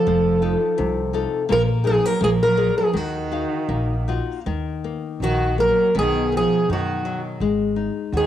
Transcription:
Already playing: cello F3, twelve-string acoustic guitar A4
0.07 upright bass F1, nylon-string guitar F3
0.42 nylon-string guitar D#4 F4 A4
0.78 upright bass C2, nylon-string guitar C3
1.13 nylon-string guitar D#4 F4 A4
1.49 upright bass A#1, cello F3, nylon-string guitar A#3, twelve-string acoustic guitar A#4
1.84 cello F3, nylon-string guitar D#4 G#4 A#4, twelve-string acoustic guitar G#4
2.05 cello F#3, twelve-string acoustic guitar A#4
2.21 upright bass A#1, cello F3, nylon-string guitar A#3, twelve-string acoustic guitar G#4
2.42 cello F#3, twelve-string acoustic guitar A#4
2.57 nylon-string guitar G#4 A#4 D5
2.78 cello F3, twelve-string acoustic guitar G#4
2.93 upright bass D#2, nylon-string guitar D#3, cello D#3, twelve-string acoustic guitar F#4
3.31 nylon-string guitar D#4 F#4 F5
3.69 upright bass A#1, nylon-string guitar A#3
4.08 nylon-string guitar D#4 F4 F#4
4.46 upright bass D#2, nylon-string guitar D#3
4.84 nylon-string guitar A#3
5.20 upright bass A#1, cello D#3, nylon-string guitar D#3, twelve-string acoustic guitar F#4
5.58 cello F#3, nylon-string guitar A#3, twelve-string acoustic guitar A#4
5.95 upright bass B1, nylon-string guitar B2, cello D#3
5.99 twelve-string acoustic guitar G#4
6.32 nylon-string guitar D#3, cello F3
6.37 twelve-string acoustic guitar G#4
6.69 upright bass F#2, cello D#3, nylon-string guitar D#4
6.73 twelve-string acoustic guitar F#4
7.05 nylon-string guitar F#3
7.40 upright bass G#1, nylon-string guitar G#3
7.76 nylon-string guitar D#4
8.12 upright bass D#2, cello D#3, nylon-string guitar F#4
8.17 twelve-string acoustic guitar G#4

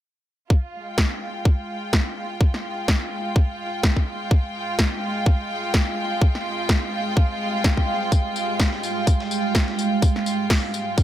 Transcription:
0.50 ambient pad G#3, string section F4, kick
0.73 string section G#3
0.84 string section G5
0.98 kick, snare
1.45 kick
1.93 kick, snare
2.41 kick
2.54 snare
2.88 kick, snare
3.36 kick
3.83 kick, snare
3.97 kick
4.31 ambient pad C5, kick
4.79 kick, snare
5.26 kick
5.74 kick, snare
6.22 kick
6.35 snare
6.69 kick, snare
7.17 kick
7.64 kick, snare
7.77 kick
8.12 kick, tambourine
8.36 tambourine
8.60 kick, snare, tambourine
8.73 snare
8.83 tambourine
9.07 kick, tambourine
9.20 snare
9.31 tambourine
9.55 kick, snare, tambourine
9.68 snare
9.79 tambourine
10.02 kick, tambourine
10.16 snare
10.26 tambourine
10.50 kick, snare, open hi-hat
10.74 tambourine
10.98 kick, tambourine

